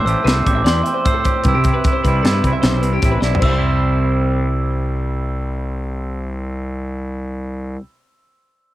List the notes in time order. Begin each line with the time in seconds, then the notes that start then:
Already playing: A2 C5
0.05 A1 A3 G4 C5 E6, closed hi-hat
0.24 C2 B4 C5, snare, closed hi-hat
0.35 A4
0.46 A1 E2 G4 D6, kick, closed hi-hat
0.55 E5
0.64 E2 D5 C6, snare, closed hi-hat
0.83 C4 E5, closed hi-hat
0.94 C5
1.05 A2 C5 E6, kick, closed hi-hat
1.14 A4
1.24 G4 C5, kick, closed hi-hat
1.44 C2 C3 B4, kick, closed hi-hat
1.48 E4 E6
1.54 C3 G4
1.64 E4, kick, closed hi-hat
1.74 B4
1.84 E4, kick, closed hi-hat
1.93 C5
2.04 C2 G3 B4, kick, closed hi-hat
2.08 E4
2.23 G2 A4, snare, closed hi-hat
2.28 E4
2.33 B4
2.44 C2 C3 E4, kick, closed hi-hat
2.53 E5
2.62 B1 C5, snare, closed hi-hat
2.82 C2 B4, closed hi-hat
2.93 G4
3.02 A1 C3 E4, kick, snare, closed hi-hat
3.12 B4
3.21 B1 E4 D5, snare
3.35 floor tom
3.41 C2 C3 C5 E6, kick, crash
3.45 G3 E5 G5
3.52 C6
3.58 E4